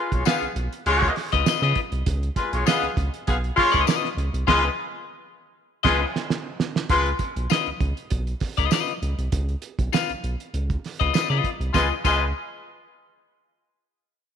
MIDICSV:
0, 0, Header, 1, 5, 480
1, 0, Start_track
1, 0, Tempo, 604230
1, 1643, Time_signature, 4, 2, 24, 8
1, 11400, End_track
2, 0, Start_track
2, 0, Title_t, "Clean electric guitar"
2, 0, Program_c, 0, 27
2, 206, Note_on_c, 0, 65, 87
2, 213, Note_on_c, 0, 71, 80
2, 220, Note_on_c, 0, 77, 107
2, 349, Note_off_c, 0, 65, 0
2, 352, Note_off_c, 0, 71, 0
2, 356, Note_off_c, 0, 77, 0
2, 1053, Note_on_c, 0, 75, 83
2, 1062, Note_on_c, 0, 71, 84
2, 1066, Note_on_c, 0, 65, 79
2, 1157, Note_off_c, 0, 65, 0
2, 1164, Note_off_c, 0, 71, 0
2, 1166, Note_on_c, 0, 65, 65
2, 1170, Note_off_c, 0, 75, 0
2, 1174, Note_on_c, 0, 71, 65
2, 1180, Note_on_c, 0, 75, 77
2, 1279, Note_off_c, 0, 65, 0
2, 1282, Note_off_c, 0, 71, 0
2, 1283, Note_off_c, 0, 75, 0
2, 1292, Note_on_c, 0, 75, 87
2, 1299, Note_on_c, 0, 71, 84
2, 1304, Note_on_c, 0, 65, 73
2, 1422, Note_off_c, 0, 75, 0
2, 1425, Note_off_c, 0, 71, 0
2, 1428, Note_off_c, 0, 65, 0
2, 2117, Note_on_c, 0, 65, 84
2, 2127, Note_on_c, 0, 71, 99
2, 2129, Note_on_c, 0, 75, 91
2, 2262, Note_off_c, 0, 65, 0
2, 2267, Note_off_c, 0, 71, 0
2, 2268, Note_off_c, 0, 75, 0
2, 2955, Note_on_c, 0, 75, 83
2, 2964, Note_on_c, 0, 71, 86
2, 2969, Note_on_c, 0, 65, 74
2, 3061, Note_off_c, 0, 65, 0
2, 3069, Note_off_c, 0, 71, 0
2, 3071, Note_on_c, 0, 65, 94
2, 3072, Note_off_c, 0, 75, 0
2, 3078, Note_on_c, 0, 71, 96
2, 3082, Note_on_c, 0, 75, 110
2, 3239, Note_off_c, 0, 65, 0
2, 3243, Note_off_c, 0, 71, 0
2, 3244, Note_off_c, 0, 75, 0
2, 3552, Note_on_c, 0, 65, 90
2, 3561, Note_on_c, 0, 71, 99
2, 3569, Note_on_c, 0, 75, 89
2, 3721, Note_off_c, 0, 65, 0
2, 3726, Note_off_c, 0, 71, 0
2, 3731, Note_off_c, 0, 75, 0
2, 4636, Note_on_c, 0, 75, 107
2, 4645, Note_on_c, 0, 71, 96
2, 4652, Note_on_c, 0, 65, 91
2, 4801, Note_off_c, 0, 75, 0
2, 4806, Note_off_c, 0, 71, 0
2, 4811, Note_off_c, 0, 65, 0
2, 5958, Note_on_c, 0, 65, 91
2, 5968, Note_on_c, 0, 71, 80
2, 5972, Note_on_c, 0, 75, 87
2, 6102, Note_off_c, 0, 65, 0
2, 6107, Note_off_c, 0, 71, 0
2, 6109, Note_off_c, 0, 75, 0
2, 6812, Note_on_c, 0, 75, 86
2, 6822, Note_on_c, 0, 71, 74
2, 6826, Note_on_c, 0, 65, 61
2, 6910, Note_off_c, 0, 65, 0
2, 6920, Note_off_c, 0, 71, 0
2, 6920, Note_on_c, 0, 65, 75
2, 6925, Note_off_c, 0, 75, 0
2, 6930, Note_on_c, 0, 71, 86
2, 6935, Note_on_c, 0, 75, 82
2, 7084, Note_off_c, 0, 65, 0
2, 7089, Note_off_c, 0, 71, 0
2, 7091, Note_off_c, 0, 75, 0
2, 7887, Note_on_c, 0, 65, 86
2, 7894, Note_on_c, 0, 71, 77
2, 7899, Note_on_c, 0, 77, 104
2, 8028, Note_off_c, 0, 65, 0
2, 8032, Note_off_c, 0, 71, 0
2, 8034, Note_off_c, 0, 77, 0
2, 8736, Note_on_c, 0, 75, 73
2, 8743, Note_on_c, 0, 71, 70
2, 8748, Note_on_c, 0, 65, 61
2, 8837, Note_off_c, 0, 65, 0
2, 8843, Note_off_c, 0, 71, 0
2, 8846, Note_on_c, 0, 65, 61
2, 8851, Note_off_c, 0, 75, 0
2, 8853, Note_on_c, 0, 71, 69
2, 8861, Note_on_c, 0, 75, 69
2, 8959, Note_off_c, 0, 65, 0
2, 8962, Note_off_c, 0, 71, 0
2, 8967, Note_off_c, 0, 75, 0
2, 8975, Note_on_c, 0, 75, 78
2, 8981, Note_on_c, 0, 71, 73
2, 8988, Note_on_c, 0, 65, 69
2, 9128, Note_off_c, 0, 75, 0
2, 9131, Note_off_c, 0, 71, 0
2, 9134, Note_off_c, 0, 65, 0
2, 9326, Note_on_c, 0, 65, 73
2, 9332, Note_on_c, 0, 71, 66
2, 9339, Note_on_c, 0, 75, 78
2, 9476, Note_off_c, 0, 65, 0
2, 9479, Note_off_c, 0, 71, 0
2, 9483, Note_off_c, 0, 75, 0
2, 9569, Note_on_c, 0, 65, 93
2, 9573, Note_on_c, 0, 71, 90
2, 9583, Note_on_c, 0, 75, 97
2, 9718, Note_off_c, 0, 65, 0
2, 9720, Note_off_c, 0, 71, 0
2, 9725, Note_off_c, 0, 75, 0
2, 11400, End_track
3, 0, Start_track
3, 0, Title_t, "Horn section"
3, 0, Program_c, 1, 61
3, 91, Note_on_c, 1, 65, 74
3, 95, Note_on_c, 1, 56, 85
3, 97, Note_on_c, 1, 73, 90
3, 182, Note_off_c, 1, 65, 0
3, 185, Note_off_c, 1, 56, 0
3, 186, Note_off_c, 1, 73, 0
3, 200, Note_on_c, 1, 77, 97
3, 202, Note_on_c, 1, 59, 93
3, 202, Note_on_c, 1, 68, 77
3, 394, Note_off_c, 1, 77, 0
3, 395, Note_off_c, 1, 59, 0
3, 396, Note_off_c, 1, 68, 0
3, 688, Note_on_c, 1, 56, 109
3, 689, Note_on_c, 1, 73, 115
3, 692, Note_on_c, 1, 65, 106
3, 879, Note_off_c, 1, 56, 0
3, 879, Note_off_c, 1, 73, 0
3, 881, Note_off_c, 1, 65, 0
3, 1875, Note_on_c, 1, 56, 78
3, 1878, Note_on_c, 1, 65, 85
3, 1878, Note_on_c, 1, 71, 93
3, 1980, Note_off_c, 1, 56, 0
3, 1981, Note_off_c, 1, 65, 0
3, 1982, Note_off_c, 1, 71, 0
3, 2008, Note_on_c, 1, 73, 98
3, 2009, Note_on_c, 1, 56, 92
3, 2012, Note_on_c, 1, 65, 79
3, 2099, Note_off_c, 1, 56, 0
3, 2099, Note_off_c, 1, 73, 0
3, 2101, Note_off_c, 1, 65, 0
3, 2113, Note_on_c, 1, 59, 101
3, 2113, Note_on_c, 1, 68, 98
3, 2115, Note_on_c, 1, 77, 102
3, 2308, Note_off_c, 1, 59, 0
3, 2309, Note_off_c, 1, 68, 0
3, 2309, Note_off_c, 1, 77, 0
3, 2597, Note_on_c, 1, 77, 84
3, 2598, Note_on_c, 1, 68, 71
3, 2601, Note_on_c, 1, 59, 75
3, 2675, Note_off_c, 1, 77, 0
3, 2676, Note_off_c, 1, 68, 0
3, 2677, Note_off_c, 1, 59, 0
3, 2827, Note_on_c, 1, 65, 121
3, 2831, Note_on_c, 1, 56, 121
3, 2831, Note_on_c, 1, 73, 127
3, 3024, Note_off_c, 1, 65, 0
3, 3027, Note_off_c, 1, 56, 0
3, 3027, Note_off_c, 1, 73, 0
3, 3551, Note_on_c, 1, 65, 119
3, 3553, Note_on_c, 1, 56, 108
3, 3556, Note_on_c, 1, 71, 112
3, 3678, Note_off_c, 1, 65, 0
3, 3679, Note_off_c, 1, 56, 0
3, 3681, Note_off_c, 1, 71, 0
3, 4638, Note_on_c, 1, 71, 102
3, 4643, Note_on_c, 1, 56, 105
3, 4643, Note_on_c, 1, 65, 98
3, 4761, Note_off_c, 1, 71, 0
3, 4765, Note_off_c, 1, 56, 0
3, 4765, Note_off_c, 1, 65, 0
3, 5482, Note_on_c, 1, 65, 104
3, 5482, Note_on_c, 1, 71, 112
3, 5485, Note_on_c, 1, 56, 107
3, 5634, Note_off_c, 1, 71, 0
3, 5635, Note_off_c, 1, 65, 0
3, 5637, Note_off_c, 1, 56, 0
3, 9321, Note_on_c, 1, 65, 97
3, 9322, Note_on_c, 1, 71, 94
3, 9325, Note_on_c, 1, 56, 97
3, 9428, Note_off_c, 1, 65, 0
3, 9428, Note_off_c, 1, 71, 0
3, 9430, Note_off_c, 1, 56, 0
3, 9567, Note_on_c, 1, 71, 91
3, 9568, Note_on_c, 1, 65, 89
3, 9573, Note_on_c, 1, 56, 87
3, 9735, Note_off_c, 1, 71, 0
3, 9736, Note_off_c, 1, 65, 0
3, 9739, Note_off_c, 1, 56, 0
3, 11400, End_track
4, 0, Start_track
4, 0, Title_t, "Analog synth bass"
4, 0, Program_c, 2, 38
4, 96, Note_on_c, 2, 35, 98
4, 183, Note_off_c, 2, 35, 0
4, 328, Note_on_c, 2, 35, 45
4, 374, Note_off_c, 2, 35, 0
4, 441, Note_on_c, 2, 35, 93
4, 541, Note_off_c, 2, 35, 0
4, 684, Note_on_c, 2, 37, 83
4, 870, Note_off_c, 2, 37, 0
4, 1059, Note_on_c, 2, 37, 90
4, 1143, Note_off_c, 2, 37, 0
4, 1287, Note_on_c, 2, 49, 111
4, 1376, Note_off_c, 2, 49, 0
4, 1523, Note_on_c, 2, 36, 87
4, 1613, Note_off_c, 2, 36, 0
4, 1639, Note_on_c, 2, 37, 114
4, 1826, Note_off_c, 2, 37, 0
4, 2008, Note_on_c, 2, 35, 96
4, 2096, Note_off_c, 2, 35, 0
4, 2241, Note_on_c, 2, 37, 44
4, 2288, Note_off_c, 2, 37, 0
4, 2357, Note_on_c, 2, 37, 101
4, 2457, Note_off_c, 2, 37, 0
4, 2605, Note_on_c, 2, 35, 101
4, 2789, Note_off_c, 2, 35, 0
4, 2971, Note_on_c, 2, 37, 89
4, 3057, Note_off_c, 2, 37, 0
4, 3311, Note_on_c, 2, 37, 97
4, 3413, Note_off_c, 2, 37, 0
4, 3442, Note_on_c, 2, 36, 90
4, 3531, Note_off_c, 2, 36, 0
4, 3559, Note_on_c, 2, 37, 115
4, 3725, Note_off_c, 2, 37, 0
4, 4643, Note_on_c, 2, 37, 99
4, 4805, Note_off_c, 2, 37, 0
4, 5477, Note_on_c, 2, 37, 104
4, 5664, Note_off_c, 2, 37, 0
4, 5849, Note_on_c, 2, 35, 86
4, 5936, Note_off_c, 2, 35, 0
4, 6090, Note_on_c, 2, 37, 46
4, 6135, Note_off_c, 2, 37, 0
4, 6201, Note_on_c, 2, 37, 101
4, 6299, Note_off_c, 2, 37, 0
4, 6444, Note_on_c, 2, 35, 86
4, 6629, Note_off_c, 2, 35, 0
4, 6816, Note_on_c, 2, 37, 93
4, 6900, Note_off_c, 2, 37, 0
4, 7166, Note_on_c, 2, 37, 93
4, 7263, Note_off_c, 2, 37, 0
4, 7292, Note_on_c, 2, 36, 87
4, 7378, Note_off_c, 2, 36, 0
4, 7405, Note_on_c, 2, 37, 111
4, 7590, Note_off_c, 2, 37, 0
4, 7774, Note_on_c, 2, 35, 82
4, 7860, Note_off_c, 2, 35, 0
4, 8019, Note_on_c, 2, 35, 46
4, 8062, Note_off_c, 2, 35, 0
4, 8131, Note_on_c, 2, 35, 95
4, 8227, Note_off_c, 2, 35, 0
4, 8370, Note_on_c, 2, 37, 78
4, 8554, Note_off_c, 2, 37, 0
4, 8744, Note_on_c, 2, 37, 100
4, 8827, Note_off_c, 2, 37, 0
4, 8975, Note_on_c, 2, 49, 93
4, 9062, Note_off_c, 2, 49, 0
4, 9213, Note_on_c, 2, 36, 92
4, 9301, Note_off_c, 2, 36, 0
4, 9329, Note_on_c, 2, 37, 93
4, 9468, Note_off_c, 2, 37, 0
4, 9570, Note_on_c, 2, 37, 105
4, 9793, Note_off_c, 2, 37, 0
4, 11400, End_track
5, 0, Start_track
5, 0, Title_t, "Drums"
5, 95, Note_on_c, 9, 36, 95
5, 97, Note_on_c, 9, 42, 55
5, 174, Note_off_c, 9, 36, 0
5, 177, Note_off_c, 9, 42, 0
5, 201, Note_on_c, 9, 54, 91
5, 216, Note_on_c, 9, 38, 114
5, 281, Note_off_c, 9, 54, 0
5, 295, Note_off_c, 9, 38, 0
5, 330, Note_on_c, 9, 42, 40
5, 410, Note_off_c, 9, 42, 0
5, 445, Note_on_c, 9, 42, 76
5, 525, Note_off_c, 9, 42, 0
5, 576, Note_on_c, 9, 42, 55
5, 656, Note_off_c, 9, 42, 0
5, 683, Note_on_c, 9, 42, 83
5, 763, Note_off_c, 9, 42, 0
5, 813, Note_on_c, 9, 36, 82
5, 815, Note_on_c, 9, 42, 36
5, 893, Note_off_c, 9, 36, 0
5, 894, Note_off_c, 9, 42, 0
5, 921, Note_on_c, 9, 46, 79
5, 930, Note_on_c, 9, 38, 35
5, 1000, Note_off_c, 9, 46, 0
5, 1009, Note_off_c, 9, 38, 0
5, 1049, Note_on_c, 9, 42, 49
5, 1057, Note_on_c, 9, 36, 91
5, 1129, Note_off_c, 9, 42, 0
5, 1137, Note_off_c, 9, 36, 0
5, 1162, Note_on_c, 9, 54, 108
5, 1164, Note_on_c, 9, 38, 113
5, 1242, Note_off_c, 9, 54, 0
5, 1243, Note_off_c, 9, 38, 0
5, 1290, Note_on_c, 9, 38, 38
5, 1369, Note_off_c, 9, 38, 0
5, 1394, Note_on_c, 9, 42, 70
5, 1397, Note_on_c, 9, 36, 96
5, 1474, Note_off_c, 9, 42, 0
5, 1477, Note_off_c, 9, 36, 0
5, 1525, Note_on_c, 9, 42, 53
5, 1604, Note_off_c, 9, 42, 0
5, 1640, Note_on_c, 9, 42, 111
5, 1642, Note_on_c, 9, 36, 107
5, 1719, Note_off_c, 9, 42, 0
5, 1721, Note_off_c, 9, 36, 0
5, 1771, Note_on_c, 9, 42, 38
5, 1851, Note_off_c, 9, 42, 0
5, 1876, Note_on_c, 9, 36, 85
5, 1876, Note_on_c, 9, 42, 90
5, 1955, Note_off_c, 9, 36, 0
5, 1955, Note_off_c, 9, 42, 0
5, 2009, Note_on_c, 9, 42, 52
5, 2089, Note_off_c, 9, 42, 0
5, 2118, Note_on_c, 9, 54, 96
5, 2127, Note_on_c, 9, 38, 115
5, 2197, Note_off_c, 9, 54, 0
5, 2206, Note_off_c, 9, 38, 0
5, 2248, Note_on_c, 9, 42, 41
5, 2327, Note_off_c, 9, 42, 0
5, 2359, Note_on_c, 9, 36, 100
5, 2363, Note_on_c, 9, 42, 73
5, 2439, Note_off_c, 9, 36, 0
5, 2443, Note_off_c, 9, 42, 0
5, 2492, Note_on_c, 9, 42, 52
5, 2572, Note_off_c, 9, 42, 0
5, 2600, Note_on_c, 9, 42, 98
5, 2605, Note_on_c, 9, 36, 93
5, 2680, Note_off_c, 9, 42, 0
5, 2685, Note_off_c, 9, 36, 0
5, 2733, Note_on_c, 9, 42, 37
5, 2812, Note_off_c, 9, 42, 0
5, 2838, Note_on_c, 9, 46, 72
5, 2841, Note_on_c, 9, 36, 101
5, 2847, Note_on_c, 9, 38, 35
5, 2917, Note_off_c, 9, 46, 0
5, 2921, Note_off_c, 9, 36, 0
5, 2926, Note_off_c, 9, 38, 0
5, 2967, Note_on_c, 9, 42, 57
5, 2973, Note_on_c, 9, 36, 83
5, 3047, Note_off_c, 9, 42, 0
5, 3052, Note_off_c, 9, 36, 0
5, 3075, Note_on_c, 9, 54, 106
5, 3086, Note_on_c, 9, 38, 122
5, 3155, Note_off_c, 9, 54, 0
5, 3166, Note_off_c, 9, 38, 0
5, 3216, Note_on_c, 9, 38, 39
5, 3295, Note_off_c, 9, 38, 0
5, 3323, Note_on_c, 9, 42, 74
5, 3402, Note_off_c, 9, 42, 0
5, 3450, Note_on_c, 9, 42, 61
5, 3529, Note_off_c, 9, 42, 0
5, 3558, Note_on_c, 9, 36, 112
5, 3559, Note_on_c, 9, 49, 86
5, 3566, Note_on_c, 9, 38, 96
5, 3638, Note_off_c, 9, 36, 0
5, 3639, Note_off_c, 9, 49, 0
5, 3645, Note_off_c, 9, 38, 0
5, 4644, Note_on_c, 9, 36, 112
5, 4645, Note_on_c, 9, 49, 82
5, 4652, Note_on_c, 9, 38, 107
5, 4724, Note_off_c, 9, 36, 0
5, 4725, Note_off_c, 9, 49, 0
5, 4731, Note_off_c, 9, 38, 0
5, 4892, Note_on_c, 9, 38, 62
5, 4971, Note_off_c, 9, 38, 0
5, 5007, Note_on_c, 9, 38, 92
5, 5087, Note_off_c, 9, 38, 0
5, 5242, Note_on_c, 9, 38, 96
5, 5322, Note_off_c, 9, 38, 0
5, 5370, Note_on_c, 9, 38, 98
5, 5450, Note_off_c, 9, 38, 0
5, 5477, Note_on_c, 9, 42, 100
5, 5478, Note_on_c, 9, 36, 114
5, 5557, Note_off_c, 9, 42, 0
5, 5558, Note_off_c, 9, 36, 0
5, 5606, Note_on_c, 9, 42, 37
5, 5686, Note_off_c, 9, 42, 0
5, 5712, Note_on_c, 9, 42, 81
5, 5715, Note_on_c, 9, 36, 82
5, 5791, Note_off_c, 9, 42, 0
5, 5794, Note_off_c, 9, 36, 0
5, 5851, Note_on_c, 9, 42, 52
5, 5930, Note_off_c, 9, 42, 0
5, 5956, Note_on_c, 9, 54, 95
5, 5970, Note_on_c, 9, 38, 104
5, 6035, Note_off_c, 9, 54, 0
5, 6049, Note_off_c, 9, 38, 0
5, 6087, Note_on_c, 9, 42, 33
5, 6166, Note_off_c, 9, 42, 0
5, 6200, Note_on_c, 9, 36, 105
5, 6203, Note_on_c, 9, 42, 63
5, 6280, Note_off_c, 9, 36, 0
5, 6283, Note_off_c, 9, 42, 0
5, 6332, Note_on_c, 9, 42, 46
5, 6412, Note_off_c, 9, 42, 0
5, 6438, Note_on_c, 9, 42, 89
5, 6447, Note_on_c, 9, 36, 93
5, 6518, Note_off_c, 9, 42, 0
5, 6527, Note_off_c, 9, 36, 0
5, 6571, Note_on_c, 9, 42, 38
5, 6650, Note_off_c, 9, 42, 0
5, 6676, Note_on_c, 9, 46, 75
5, 6684, Note_on_c, 9, 36, 90
5, 6685, Note_on_c, 9, 38, 34
5, 6755, Note_off_c, 9, 46, 0
5, 6764, Note_off_c, 9, 36, 0
5, 6764, Note_off_c, 9, 38, 0
5, 6809, Note_on_c, 9, 42, 53
5, 6817, Note_on_c, 9, 36, 88
5, 6889, Note_off_c, 9, 42, 0
5, 6897, Note_off_c, 9, 36, 0
5, 6918, Note_on_c, 9, 54, 94
5, 6925, Note_on_c, 9, 38, 118
5, 6997, Note_off_c, 9, 54, 0
5, 7005, Note_off_c, 9, 38, 0
5, 7053, Note_on_c, 9, 42, 39
5, 7132, Note_off_c, 9, 42, 0
5, 7170, Note_on_c, 9, 42, 63
5, 7249, Note_off_c, 9, 42, 0
5, 7297, Note_on_c, 9, 42, 55
5, 7377, Note_off_c, 9, 42, 0
5, 7405, Note_on_c, 9, 42, 117
5, 7408, Note_on_c, 9, 36, 111
5, 7485, Note_off_c, 9, 42, 0
5, 7487, Note_off_c, 9, 36, 0
5, 7536, Note_on_c, 9, 42, 36
5, 7615, Note_off_c, 9, 42, 0
5, 7641, Note_on_c, 9, 42, 83
5, 7720, Note_off_c, 9, 42, 0
5, 7775, Note_on_c, 9, 36, 99
5, 7777, Note_on_c, 9, 42, 57
5, 7854, Note_off_c, 9, 36, 0
5, 7857, Note_off_c, 9, 42, 0
5, 7887, Note_on_c, 9, 54, 89
5, 7899, Note_on_c, 9, 38, 104
5, 7967, Note_off_c, 9, 54, 0
5, 7979, Note_off_c, 9, 38, 0
5, 8019, Note_on_c, 9, 42, 35
5, 8098, Note_off_c, 9, 42, 0
5, 8133, Note_on_c, 9, 42, 67
5, 8213, Note_off_c, 9, 42, 0
5, 8263, Note_on_c, 9, 42, 55
5, 8343, Note_off_c, 9, 42, 0
5, 8373, Note_on_c, 9, 42, 84
5, 8452, Note_off_c, 9, 42, 0
5, 8500, Note_on_c, 9, 36, 89
5, 8503, Note_on_c, 9, 42, 37
5, 8579, Note_off_c, 9, 36, 0
5, 8583, Note_off_c, 9, 42, 0
5, 8615, Note_on_c, 9, 46, 76
5, 8624, Note_on_c, 9, 38, 38
5, 8694, Note_off_c, 9, 46, 0
5, 8703, Note_off_c, 9, 38, 0
5, 8745, Note_on_c, 9, 36, 84
5, 8745, Note_on_c, 9, 42, 46
5, 8825, Note_off_c, 9, 36, 0
5, 8825, Note_off_c, 9, 42, 0
5, 8849, Note_on_c, 9, 54, 90
5, 8860, Note_on_c, 9, 38, 113
5, 8928, Note_off_c, 9, 54, 0
5, 8939, Note_off_c, 9, 38, 0
5, 9089, Note_on_c, 9, 36, 88
5, 9093, Note_on_c, 9, 42, 70
5, 9168, Note_off_c, 9, 36, 0
5, 9172, Note_off_c, 9, 42, 0
5, 9223, Note_on_c, 9, 42, 50
5, 9303, Note_off_c, 9, 42, 0
5, 9328, Note_on_c, 9, 54, 87
5, 9330, Note_on_c, 9, 36, 104
5, 9337, Note_on_c, 9, 38, 80
5, 9407, Note_off_c, 9, 54, 0
5, 9409, Note_off_c, 9, 36, 0
5, 9416, Note_off_c, 9, 38, 0
5, 9570, Note_on_c, 9, 36, 101
5, 9570, Note_on_c, 9, 49, 87
5, 9571, Note_on_c, 9, 54, 77
5, 9650, Note_off_c, 9, 36, 0
5, 9650, Note_off_c, 9, 49, 0
5, 9650, Note_off_c, 9, 54, 0
5, 11400, End_track
0, 0, End_of_file